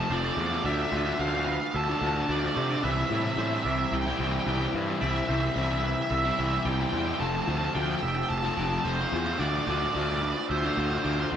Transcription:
Already playing: C4 F4 G5 A5
0.04 A5
0.09 F1 F3 A3 C4 F4 C5 D5
0.18 D5
0.22 A3 C4 F4 D5
0.32 F3 D5
0.37 E2 A3 C4 F4 D5
0.46 F4 D5
0.52 A3 C4 D5
0.63 D2 D3 A3 D4 F4 D5 E5
0.73 E5
0.82 E5
0.89 D2 D3 A3 D4 C5 E5
0.94 F4 E5
1.04 A3 D4 F4 E5
1.13 E5
1.18 D2 D3 A3 D4 F4 F5
1.28 F5
1.33 A3 D4 F4 F5
1.45 D3 A3 D4 F4 B4 F5, muted distorted electric guitar stroke
1.53 F5
1.60 A3 D4 F4 F5
1.74 D2 E5 A5
1.84 F4 A5
1.89 A3 D4 A5
1.99 D2 D3 A3 D4 A5
2.04 F4 A5
2.15 A3 D4 F4 A5
2.23 A5
2.28 D2 D3 A3 D4 F4 D5
2.39 F4 D5
2.44 A3 D4 D5
2.55 C3 D3 A3 D4 F4 C5 D5
2.62 D5
2.69 A3 D4 F4 D5
2.78 D5
2.83 C2 C3 E3 G3 C4 E4 B4 E5 G5 B5
2.91 E5
3.00 E5
3.07 E3 E5
3.11 A2 G3 C4 E4
3.15 E5
3.22 C4 E4 E5
3.27 G3 E5
3.37 A2 C3 E3 G3 C4 E4 C5 E5
3.46 E5
3.51 G3 C4 E4 E5
3.63 C2 E3 G3 D5 E5, muted distorted electric guitar stroke
3.67 C4 E4 E5
3.78 G3 C4 E4 E5
3.85 E5
3.92 C2 G5
4.02 E4 G5
4.07 G3 C4 G5
4.17 C2 E3 G3 C5 G5
4.21 C4 E4 G5
4.32 G3 C4 E4 G5
4.40 G5
4.46 C2 C3 E3 G3 C4 E4 B4 G5
4.55 E4 G5
4.61 G3 C4 G5
4.73 G2 E3 G3 C4 E4
4.87 G3 C4 E4
5.01 C2 C3 E3 G3 C4 E4 D5 E5
5.09 E5
5.16 E5
5.26 C2 E3 C5 E5
5.30 G3 C4 E4 E5
5.40 E4 E5
5.44 G3 C4 E5
5.55 C2 C3 E3 G3 C4 E4 E5
5.63 E5
5.69 G3 C4 E4 E5
5.78 E3 E5
5.83 G3 C4 E4 B4 E5, muted distorted electric guitar stroke
5.94 E4 E5
5.98 G3 C4
6.02 E5
6.10 C2 E5
6.18 E5
6.24 G3 C4 E4 E5
6.32 E5
6.37 C2 E3 G3 C4 E4 E5
6.47 E4 E5
6.53 G3 C4 E5
6.64 C2 C3 E3 G3 C4 E4 D5 G5
6.73 G5
6.78 G3 C4 E4 G5
6.89 E2 E3 C5 G5
6.94 G3 C4 E4
6.99 G5
7.06 G3 C4 E4 G5
7.14 G5
7.20 F1 F3 A3 C4 F4 C5 A5
7.27 A5
7.36 A5
7.42 F3 A5
7.47 D2 A3 C4 F4 A5
7.58 F4 A5
7.62 A3 C4 A5
7.74 D2 F3 A3 C4 F4 D5 G5
7.83 G5
7.87 A3 C4 F4
7.92 G5
7.99 F3 A3 E5 G5, muted distorted electric guitar stroke
8.03 F1 C4 F4
8.08 G5
8.15 A3 C4 F4 G5
8.23 G5
8.29 F1 A5
8.38 A5
8.42 A3 C4 F4 A5
8.54 F1 F3 A3 D5 A5
8.58 C4 F4
8.62 A5
8.70 A3 C4 F4 A5
8.78 A5
8.84 F1 F3 A3 C4 F4 C5
8.94 F4 C5
8.99 A3 C4 C5
9.09 E2 F3 A3 C5
9.14 C4 F4 C5
9.25 A3 C4 F4 C5
9.34 C5
9.39 D2 D3 A3 D4 F4 C5 D5 A5
9.49 D5
9.55 D5
9.63 D3 C5 D5
9.67 D2 A3 D4 F4 D5
9.78 D4 F4 D5
9.83 A3 D5
9.93 D2 D3 A3 D4 F4 D5
10.01 D5
10.07 A3 D4 F4 D5
10.16 D5
10.21 D3 A3 D4 F4 B4 D5, muted distorted electric guitar stroke
10.31 D5
10.35 A3 D4 F4 D5
10.49 D2 C5 E5
10.58 C5
10.62 A3 D4 F4 C5
10.74 D2 D3 A3 D4 C5
10.79 F4 C5
10.89 A3 D4 F4 C5
10.97 C5
11.03 D2 D3 A3 D4 F4 C5 D5
11.13 C5
11.17 A3 D4 F4 C5
11.31 E2 D3 A3 D4 C5

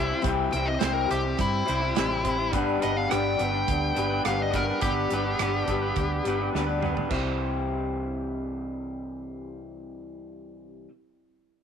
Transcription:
Already playing: C2 C3 E3 G3 C4 E4 G4
0.00 E4 C5
0.10 G3 C4 E4 C5
0.22 C2 C3 E3 G3 C4 E4 G4, kick, closed hi-hat
0.26 G3 C4 E4 C5
0.51 C2 G3 C4 E4 G4 G5, closed hi-hat
0.55 C4 E4 C5
0.66 E4 C5 D#5
0.70 G3 C4
0.79 C2 C3 E3 G3 C4 E4 G4 C5, snare, closed hi-hat
0.83 E4 C5
0.93 A#4
1.06 G3 C4 E4 G4
1.11 C2 E4 G4 C5, closed hi-hat
1.22 G3 C4 E4 C5
1.37 G2 G3 C4 E4 G4, kick, closed hi-hat
1.65 C2 G3 C4 E4 G4 C5, closed hi-hat
1.80 G3 C4 E4 C5
1.95 A1 C3 E3 G3 C4 E4 G4 C5, snare, closed hi-hat
2.08 G3 C4 E4 C5
2.23 G3 C4 E4 G4 C5, kick, closed hi-hat
2.27 C4
2.37 G3 C4 E4 C5
2.51 G1 G2 D3 G3 B3 D4 B4, kick, closed hi-hat
2.55 D4 G4
2.79 G3 B3 D4 G4 B4, closed hi-hat
2.83 G1 G3 B3 D4 D#5
2.93 B3 B4 F5
2.97 D4
3.08 G2 D3 G3 B3 D4 B4, cross-stick, closed hi-hat
3.12 G1 B3 D4 G4 G5
3.37 G1 G3 B3 D4 G4 B4, closed hi-hat
3.41 G3 B3 D4
3.50 B3 D4 B4
3.68 D2 G3 B3 D4, kick, closed hi-hat
3.72 G4
3.95 G1 G3 B3 D4 G4 B4, closed hi-hat
4.00 G3 B3 D4
4.09 B3 D4 B4
4.24 G1 G2 G3 B3 D4 B4 F5, cross-stick, closed hi-hat
4.28 D3 G3 B3 D4 G4
4.38 B3 D4 B4 D#5
4.52 G3 B3 D4 A#4 B4, kick, closed hi-hat
4.56 G3 B3 D4 G4
4.66 B3 B4
4.70 D4
4.81 G1 G3 B3 D4 G4, kick, closed hi-hat
4.85 G2 D3 G3 B3 D4 G4 B4
5.10 G1 G3 B3 D4 G4 B4, closed hi-hat
5.16 G3 B3 D4
5.24 B3 D4 B4
5.39 G1 G2 D3 G3 B3 D4 B4, cross-stick, closed hi-hat
5.43 D4 G4
5.67 G1 G3 B3 D4 G4 B4, kick, closed hi-hat
5.71 G3 B3
5.82 B3 D4 B4
5.96 D2 G3 B3 D4, kick, closed hi-hat
6.01 G4
6.24 G1 G3 B3 D4 G4 B4, closed hi-hat
6.29 G3 B3
6.38 B3 D4 B4
6.53 D2 G2 G3 B3 D4 B4, snare
6.57 D3 G3 B3 D4 G4
6.67 B3 D4 B4
6.80 G3 B3 D4 B4, mid tom
6.84 G3 B3 D4 G4
6.94 B3 B4, floor tom
6.99 D4
7.08 C2 C3 E3 G3 C4 E4, kick, china
7.12 G3 C4 C5
7.18 E4 G4

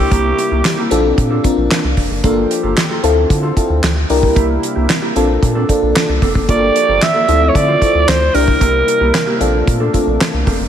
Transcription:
Already playing: C3 G3 A#3 D4 E4 G4
0.11 C2 A#3 E4 G4, kick, closed hi-hat
0.25 muted clean electric guitar stroke
0.38 muted clean electric guitar stroke, closed hi-hat
0.51 C2 A#3 E4 G4
0.64 muted clean electric guitar stroke, snare, clap, closed hi-hat
0.77 A#3 E4 G4
0.91 A#1 C4 D4 F4 A4, closed hi-hat
1.04 muted clean electric guitar stroke
1.18 A#2, muted clean electric guitar stroke, kick, closed hi-hat
1.30 C4 D4 A4
1.44 C4 D4 F4 A#4, muted clean electric guitar stroke, kick, closed hi-hat
1.57 A#1, muted clean electric guitar stroke
1.71 muted clean electric guitar stroke, snare, clap, closed hi-hat
1.84 C2, muted clean electric guitar stroke
1.97 F1, kick, open hi-hat
2.10 F#1, muted clean electric guitar stroke
2.23 G1 F3 A#3 D4 F4 G4 A4, kick, closed hi-hat
2.37 muted clean electric guitar stroke
2.50 muted clean electric guitar stroke, closed hi-hat
2.63 G1 A#3 F4 A4
2.77 snare, clap, closed hi-hat
2.89 A#3 F4 A4
3.03 D2 D3 F3 C4 E4 F4 A4, closed hi-hat
3.16 muted clean electric guitar stroke
3.30 D3, muted clean electric guitar stroke, kick, closed hi-hat
3.43 C4 F4 A4
3.56 C4 E4 F4 A4, muted clean electric guitar stroke, kick, closed hi-hat
3.70 D2, muted clean electric guitar stroke
3.83 D2, muted clean electric guitar stroke, snare, clap, closed hi-hat
3.96 muted clean electric guitar stroke
4.10 C2 C3 G3 A#3 D4 E4 G4 A#4, open hi-hat
4.22 muted clean electric guitar stroke, kick
4.35 C2 A#3 E4 G4, kick, closed hi-hat
4.49 muted clean electric guitar stroke
4.62 muted clean electric guitar stroke, closed hi-hat
4.75 C2 A#3 E4 G4
4.89 snare, clap, closed hi-hat
5.02 A#3 E4 G4
5.15 A#1 C4 D4 F4 A4, closed hi-hat
5.29 muted clean electric guitar stroke
5.42 A#2, muted clean electric guitar stroke, kick, closed hi-hat
5.55 C4 D4 A4
5.69 C4 D4 F4 A4, muted clean electric guitar stroke, kick, closed hi-hat
5.82 A#1, muted clean electric guitar stroke
5.95 muted clean electric guitar stroke, snare, clap, closed hi-hat
6.09 C2, muted clean electric guitar stroke
6.22 F1 C4 D4 A4, kick, open hi-hat
6.35 F#1 C4 D4, kick
6.48 G1 F3 A#3 D4 F4 G4 A4 D5, kick, closed hi-hat
6.62 muted clean electric guitar stroke
6.75 muted clean electric guitar stroke, closed hi-hat
6.88 G1 A#3 F4 A4
7.01 E5, muted clean electric guitar stroke, snare, clap, closed hi-hat
7.14 A#3 F4 A4
7.28 D2 D3 F3 A3 C4 E4 F4 A4, closed hi-hat
7.41 muted clean electric guitar stroke
7.49 C#5
7.54 D3 D5, muted clean electric guitar stroke, kick, closed hi-hat
7.67 C4 F4 A4
7.81 C4 E4 F4 A4, muted clean electric guitar stroke, kick, closed hi-hat
7.94 D2, muted clean electric guitar stroke
8.08 D2 C5, muted clean electric guitar stroke, snare, clap, closed hi-hat
8.21 muted clean electric guitar stroke
8.34 C2 C3 G3 A#3 D4 E4 G4 A#4, open hi-hat
8.47 muted clean electric guitar stroke, kick
8.61 C2 A#3 E4 G4, kick, closed hi-hat
8.74 muted clean electric guitar stroke
8.87 muted clean electric guitar stroke, closed hi-hat
9.00 C2 A#3 E4 G4
9.14 snare, clap, closed hi-hat
9.27 A#3 E4 G4
9.40 A#1 A3 A#3 C4 D4 F4 A4, closed hi-hat
9.54 muted clean electric guitar stroke
9.67 A#2, muted clean electric guitar stroke, kick, closed hi-hat
9.80 C4 D4 A4
9.93 C4 D4 F4 A4, muted clean electric guitar stroke, kick, closed hi-hat
10.07 A#1, muted clean electric guitar stroke
10.21 snare, clap, closed hi-hat
10.33 C2, muted clean electric guitar stroke
10.46 F1 C4 D4 A4, kick, open hi-hat
10.60 F#1, muted clean electric guitar stroke

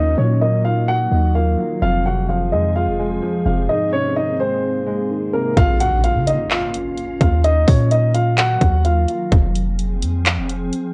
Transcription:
Already playing: D#2 D#3 F#3 A#3 D#4 D#5, downlifter
0.18 A#2 F#3 C#4 C#5
0.41 A#3 D#4 D#5
0.65 D#4 F4 F5
0.88 F#4 F#5
1.11 D#2 D#4
1.35 A#3 F4 F5
1.58 F#3
1.82 F1 F2 F3 C4 F4 G#4 F5
2.05 C3 F#4 F#5
2.29 F3 F4 F5
2.52 F2 G#3 D#4 D#5
2.76 F4 F5
2.87 F1
2.99 G#3
3.22 F3
3.46 F1 C3 F4 F5
3.69 G#2 A#3 D#4 D#5
3.93 C3 C#4 C#5
4.16 D#3 D#4 D#5
4.40 G#3 C4 C5
4.87 G#3
5.10 D#3
5.33 C3 A#3 A#4
5.57 A#1 A#3 C#4 F4 F5, kick, closed hi-hat, impact
5.80 F#4 F#5, closed hi-hat
6.04 F4 F5, closed hi-hat
6.15 C#3
6.27 D#4 D#5, closed hi-hat
6.51 F4 F5, clap, closed hi-hat
6.74 closed hi-hat
6.98 closed hi-hat
7.21 D#2 F4 F5, kick, closed hi-hat
7.44 D#3 F#3 A#3 D#4 D#5, closed hi-hat
7.68 A#2 C#4 C#5, kick, open hi-hat
7.91 D#4 D#5, closed hi-hat
8.15 F4 F5, closed hi-hat
8.38 F#4 F#5, clap, closed hi-hat
8.61 D#2, kick, closed hi-hat
8.85 F4 F5, closed hi-hat
9.08 closed hi-hat
9.32 F1 F3 C4 G#4, kick, closed hi-hat
9.55 closed hi-hat
9.79 closed hi-hat
10.02 F2, closed hi-hat
10.26 clap, closed hi-hat
10.37 F1
10.49 closed hi-hat
10.72 closed hi-hat

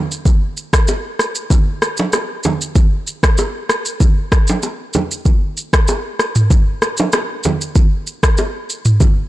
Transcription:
0.12 shaker
0.25 kick, low conga, shaker
0.57 shaker
0.73 kick, cross-stick, shaker
0.88 high bongo, shaker
1.19 cross-stick, shaker
1.35 shaker
1.50 kick, low conga, shaker
1.82 cross-stick, shaker
1.97 low bongo, shaker
2.13 cross-stick, high bongo, shaker
2.43 high bongo, low bongo, low conga, shaker
2.61 shaker
2.76 kick, low conga, shaker
3.07 shaker
3.23 kick, cross-stick, shaker
3.38 high bongo, shaker
3.69 cross-stick, shaker
3.85 shaker
4.00 kick, low conga, shaker
4.32 kick, cross-stick, shaker
4.47 low bongo, shaker
4.63 high bongo, shaker
4.93 high bongo, low bongo, low conga, shaker
5.11 shaker
5.25 kick, low conga, shaker
5.57 shaker
5.73 kick, cross-stick, shaker
5.88 high bongo, shaker
6.19 cross-stick, shaker
6.35 mid tom, shaker
6.50 kick, low conga, shaker
6.82 cross-stick, shaker
6.97 low bongo, shaker
7.13 cross-stick, high bongo, shaker
7.44 high bongo, low bongo, low conga, shaker
7.61 shaker
7.76 kick, low conga, shaker
8.07 shaker
8.23 kick, cross-stick, shaker
8.37 high bongo, shaker
8.70 shaker
8.85 mid tom, shaker
9.00 kick, low conga, shaker

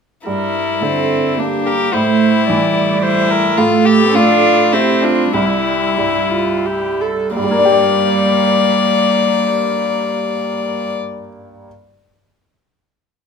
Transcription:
0.26 G2 G3 E4 A#4
0.82 D3 C4 A4
1.38 A#3 D4 G4
1.66 G4 A#4
1.92 A2 A3 E4 C5
2.47 E3 G3 D5
3.03 E4 C5
3.31 A#4
3.57 A2 A3 F4 A4
3.86 G4
4.14 A3 D4 F4
4.72 C4 E4 G4
5.03 D4 F4
5.32 C2 G3 E4
5.98 G2 E4
6.31 F4
6.66 G4
7.01 A4
7.35 G2 G3 A#3 D5
7.44 G3
7.51 A#3
7.58 D4
7.65 G4
7.72 D5

